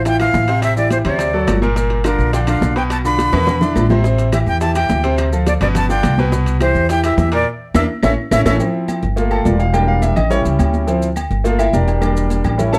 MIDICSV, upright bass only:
0, 0, Header, 1, 2, 480
1, 0, Start_track
1, 0, Key_signature, -1, "minor"
1, 0, Tempo, 284900
1, 1053, Time_signature, 4, 2, 24, 8
1, 21544, End_track
2, 0, Start_track
2, 0, Title_t, "Upright bass"
2, 0, Program_c, 0, 32
2, 0, Note_on_c, 0, 33, 93
2, 520, Note_off_c, 0, 33, 0
2, 564, Note_on_c, 0, 33, 93
2, 1677, Note_off_c, 0, 33, 0
2, 1763, Note_on_c, 0, 38, 100
2, 2436, Note_off_c, 0, 38, 0
2, 2486, Note_on_c, 0, 31, 97
2, 3597, Note_off_c, 0, 31, 0
2, 3682, Note_on_c, 0, 34, 102
2, 4356, Note_off_c, 0, 34, 0
2, 4402, Note_on_c, 0, 35, 98
2, 5515, Note_off_c, 0, 35, 0
2, 5603, Note_on_c, 0, 40, 91
2, 6276, Note_off_c, 0, 40, 0
2, 6321, Note_on_c, 0, 33, 93
2, 7434, Note_off_c, 0, 33, 0
2, 7523, Note_on_c, 0, 40, 99
2, 8196, Note_off_c, 0, 40, 0
2, 8244, Note_on_c, 0, 38, 97
2, 9355, Note_off_c, 0, 38, 0
2, 9449, Note_on_c, 0, 31, 101
2, 10118, Note_off_c, 0, 31, 0
2, 10170, Note_on_c, 0, 36, 102
2, 11278, Note_off_c, 0, 36, 0
2, 11366, Note_on_c, 0, 40, 102
2, 12037, Note_off_c, 0, 40, 0
2, 12083, Note_on_c, 0, 40, 98
2, 12532, Note_off_c, 0, 40, 0
2, 13045, Note_on_c, 0, 40, 93
2, 13225, Note_off_c, 0, 40, 0
2, 13528, Note_on_c, 0, 33, 99
2, 13707, Note_off_c, 0, 33, 0
2, 14006, Note_on_c, 0, 33, 109
2, 14186, Note_off_c, 0, 33, 0
2, 14244, Note_on_c, 0, 33, 111
2, 14425, Note_off_c, 0, 33, 0
2, 15211, Note_on_c, 0, 31, 100
2, 15879, Note_off_c, 0, 31, 0
2, 15928, Note_on_c, 0, 28, 98
2, 17037, Note_off_c, 0, 28, 0
2, 17126, Note_on_c, 0, 33, 101
2, 17574, Note_off_c, 0, 33, 0
2, 17608, Note_on_c, 0, 37, 85
2, 17832, Note_off_c, 0, 37, 0
2, 17847, Note_on_c, 0, 38, 95
2, 18957, Note_off_c, 0, 38, 0
2, 19047, Note_on_c, 0, 31, 91
2, 19718, Note_off_c, 0, 31, 0
2, 19766, Note_on_c, 0, 28, 98
2, 20876, Note_off_c, 0, 28, 0
2, 20970, Note_on_c, 0, 33, 92
2, 21544, Note_off_c, 0, 33, 0
2, 21544, End_track
0, 0, End_of_file